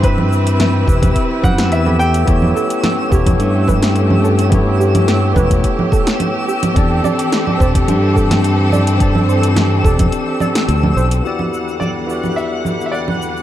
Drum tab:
HH |x--xx--xx--xx--x|x--xx--xx--xx--x|x--xx--xx--xx--x|x--xx--xx--xx--x|
SH |x-xxx-xxx-xxx-xx|x-xxx-xxx-xxx-xx|x-xxx-xxx-xxx-xx|x-xxx-xxx-xxx-xx|
SD |----o------o----|----o------o----|----o------o----|----o------o----|
CG |-O--O--O--O--O--|-O--O--O--O--O--|O--O--O--O--O--O|--O--O--O--O--O-|
BD |o-----ooo-o-----|o-----oo--o-----|o-----ooo-o-----|o-----oo--o-----|

HH |x--xx--xx--xx--x|----------------|
SH |x-xxx-xxx-xxx-xx|x-xxx-xxx-xxx-xx|
SD |----o------o----|----------------|
CG |-O--O--O--O--O--|-O--O--O--O--O--|
BD |o-----oo--------|----------------|